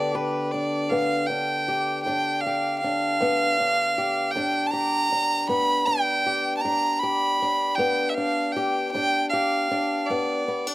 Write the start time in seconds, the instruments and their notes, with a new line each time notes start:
Already playing: steel-string acoustic guitar G2 D3 B3 D4 G4, fiddle D5
0.15 steel-string acoustic guitar G4, fiddle B4
0.52 steel-string acoustic guitar D4, fiddle D5
0.89 steel-string acoustic guitar G2 B3, fiddle F5
1.27 steel-string acoustic guitar D4, fiddle G5
1.68 steel-string acoustic guitar G4
2.03 steel-string acoustic guitar G2, fiddle G5
2.07 steel-string acoustic guitar D4
2.41 fiddle F5
2.46 steel-string acoustic guitar G4
2.79 fiddle F5
2.84 steel-string acoustic guitar D4
3.20 steel-string acoustic guitar G2 B3
3.60 steel-string acoustic guitar D4
3.98 steel-string acoustic guitar G4
4.31 fiddle G5
4.36 steel-string acoustic guitar G2 D4
4.67 fiddle A5
4.71 steel-string acoustic guitar G4, fiddle A#5
5.12 steel-string acoustic guitar D4
5.47 steel-string acoustic guitar G2 B3, fiddle B5
5.86 steel-string acoustic guitar D4, fiddle G5
6.26 steel-string acoustic guitar G4
6.57 fiddle A5
6.61 steel-string acoustic guitar G2, fiddle A#5
6.65 steel-string acoustic guitar D4
7.00 steel-string acoustic guitar G4, fiddle B5
7.42 steel-string acoustic guitar D4
7.75 steel-string acoustic guitar G2 B3, fiddle G5
8.09 fiddle E5
8.15 steel-string acoustic guitar D4, fiddle F5
8.52 fiddle G5
8.56 steel-string acoustic guitar G4
8.92 steel-string acoustic guitar G2 D4, fiddle G5
9.29 steel-string acoustic guitar G4, fiddle F5
9.71 steel-string acoustic guitar D4
10.05 fiddle D5
10.10 steel-string acoustic guitar G2 B3
10.48 steel-string acoustic guitar B3
10.67 steel-string acoustic guitar D4